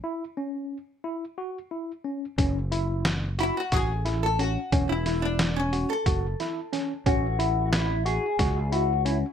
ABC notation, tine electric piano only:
X:1
M:7/8
L:1/8
Q:1/4=90
K:F#m
V:1 name="Tine electric piano"
E C2 E F E C | C E2 F F E C | C E2 F F E C | C E2 F F E C |]